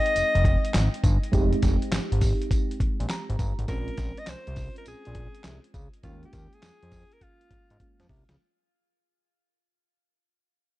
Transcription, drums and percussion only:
0.06 closed hi-hat
0.16 closed hi-hat, tambourine
0.35 closed hi-hat
0.45 kick, closed hi-hat
0.65 closed hi-hat
0.74 snare, clap, closed hi-hat, tambourine
0.94 closed hi-hat
1.04 kick, closed hi-hat, tambourine
1.23 closed hi-hat
1.33 kick, closed hi-hat, tambourine
1.53 closed hi-hat
1.62 kick, snare, closed hi-hat, tambourine
1.82 closed hi-hat
1.92 snare, clap, closed hi-hat, tambourine
2.12 closed hi-hat
2.21 kick, open hi-hat, tambourine
2.42 closed hi-hat
2.51 kick, closed hi-hat, tambourine
2.71 closed hi-hat
2.80 kick, closed hi-hat
3.00 closed hi-hat
3.10 snare, clap, closed hi-hat, tambourine
3.30 closed hi-hat
3.39 kick, closed hi-hat, tambourine
3.59 closed hi-hat
3.68 kick, closed hi-hat, tambourine
3.88 closed hi-hat
3.97 kick, snare, closed hi-hat, tambourine
4.17 closed hi-hat
4.27 snare, clap, closed hi-hat, tambourine
4.47 closed hi-hat
4.56 kick, open hi-hat, tambourine
4.76 closed hi-hat
4.85 closed hi-hat, tambourine
5.05 closed hi-hat
5.15 kick, closed hi-hat
5.35 closed hi-hat
5.44 snare, clap, closed hi-hat, tambourine
5.64 closed hi-hat
5.74 kick, closed hi-hat, tambourine
5.93 closed hi-hat
6.03 kick, closed hi-hat, tambourine
6.23 closed hi-hat
6.33 kick, snare, closed hi-hat, tambourine
6.53 closed hi-hat
6.62 snare, clap, closed hi-hat, tambourine
6.82 closed hi-hat
6.91 kick, open hi-hat, tambourine
7.12 closed hi-hat
7.21 kick, closed hi-hat
7.41 closed hi-hat
7.51 kick, closed hi-hat
7.70 closed hi-hat
7.80 kick, closed hi-hat
8.00 snare, closed hi-hat
8.09 kick, open hi-hat
8.29 snare, closed hi-hat

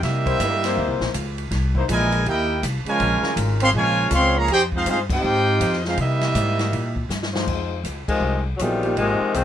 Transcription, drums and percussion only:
0.03 kick, snare, ride
0.26 kick, ride
0.40 kick, hi-hat pedal, ride
0.64 snare, ride
0.77 kick
1.01 snare
1.14 kick, hi-hat pedal, ride
1.38 ride
1.51 kick, snare, ride
1.75 kick
1.89 kick, hi-hat pedal, ride
2.12 ride
2.26 kick, ride
2.63 kick, hi-hat pedal, ride
2.86 ride
3.00 kick, ride
3.23 snare
3.37 kick, hi-hat pedal, ride
3.60 ride
3.74 kick
4.11 kick, hi-hat pedal, ride
4.48 kick, ride
4.72 kick
4.86 kick, hi-hat pedal, ride
5.10 kick, crash
5.61 kick, hi-hat pedal, ride
5.73 snare
5.85 snare
5.97 kick, ride
6.21 snare, ride
6.35 kick, hi-hat pedal, ride
6.59 snare, ride
6.73 kick, ride
6.96 kick
7.10 snare, hi-hat pedal
7.23 snare
7.35 snare
7.47 kick, crash
7.84 kick, hi-hat pedal, ride
8.08 kick, crash
8.59 kick, hi-hat pedal, ride
8.83 ride
8.97 kick, ride
9.34 kick, hi-hat pedal, ride

